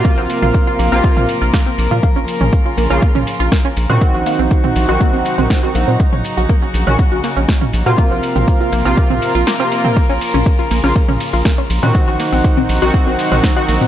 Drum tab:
RD |----------------|----------------|----------------|----------------|
HH |--o---o---o---o-|--o---o---o---o-|--o---o---o---o-|--o---o---o---o-|
SH |xxxxxxxxxxxxxxxx|xxxxxxxxxxxxxxxx|xxxxxxxxxxxxxxxx|xxxxxxxxxxxxxxxx|
SD |------------o---|------------o---|------------o---|------------o---|
T2 |---o-----o-----o|---o-----o-----o|-----o-----o----|-o-----o-----o--|
BD |o---o---o---o---|o---o---o---o---|o---o---o---o---|o---o---o---o---|

RD |----------------|x-x-x-x-x-x-x-x-|x-x-x-x-x-x-x-x-|
HH |--o---o---o---o-|--o---o---o---o-|--o---o---o---o-|
SH |xxxxxxxxxxxxxxxx|xxxxxxxxxxxxxxxx|xxxxxxxxxxxxxxxx|
SD |------------o---|------------o---|------------o---|
T2 |---o-----o-----o|---o-----o-----o|-----o-----o----|
BD |o---o---o-------|o---o---o---o---|o---o---o---o---|